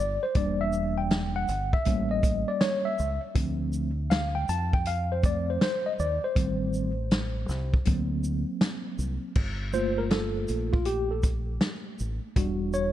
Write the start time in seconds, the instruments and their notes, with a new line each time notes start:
0.00 fingered electric bass G1, tine electric piano D5
0.23 tine electric piano C5
0.35 fingered electric bass E1, tine electric piano G3 A#3 D4 D5, kick, closed hi-hat
0.61 tine electric piano E5
0.73 shaker
0.98 tine electric piano G5
1.10 snare, closed hi-hat
1.36 tine electric piano F#5
1.48 fingered electric bass G1, closed hi-hat, shaker
1.73 tine electric piano E5, kick
1.85 fingered electric bass A1, tine electric piano G3 A#3 C#4, kick, closed hi-hat
2.11 tine electric piano D#5
2.23 kick, closed hi-hat, shaker
2.48 tine electric piano D5
2.61 tine electric piano C#5, snare, closed hi-hat
2.85 tine electric piano E5
2.99 fingered electric bass C#2, shaker
3.35 fingered electric bass D2, tine electric piano F3 A3 C4, kick, closed hi-hat
3.73 shaker
4.10 tine electric piano F5, snare, closed hi-hat
4.35 tine electric piano G5
4.49 fingered electric bass F2, tine electric piano A5, closed hi-hat, shaker
4.73 tine electric piano G5, kick
4.85 tine electric piano F5, closed hi-hat
5.12 tine electric piano C5
5.23 tine electric piano F3 A3 C4 D5, kick, closed hi-hat, shaker
5.50 tine electric piano C5
5.61 tine electric piano C5, snare, closed hi-hat
5.86 tine electric piano D#5
5.99 fingered electric bass D#2, tine electric piano D5, shaker
6.24 tine electric piano C5
6.35 fingered electric bass A1, tine electric piano D#3 G3 C4, kick, closed hi-hat
6.74 shaker
7.11 snare, closed hi-hat
7.49 fingered electric bass C2, snare, shaker
7.74 kick
7.85 fingered electric bass D2, tine electric piano F#3 A#3 C4, kick, closed hi-hat
8.24 shaker
8.61 snare, closed hi-hat
8.99 fingered electric bass C2, shaker
9.35 fingered electric bass G1, kick, crash
9.73 tine electric piano A3 A#3 F4 C5, shaker
9.98 tine electric piano A#4
10.10 tine electric piano A4, snare, closed hi-hat
10.48 fingered electric bass A#1, closed hi-hat, shaker
10.73 tine electric piano F4, kick
10.85 tine electric piano G4, closed hi-hat
11.11 tine electric piano A4
11.23 kick, closed hi-hat, shaker
11.61 snare, closed hi-hat
11.99 fingered electric bass A1, shaker
12.36 fingered electric bass E1, tine electric piano G3 D4 F#4, kick, closed hi-hat
12.74 tine electric piano C#5, shaker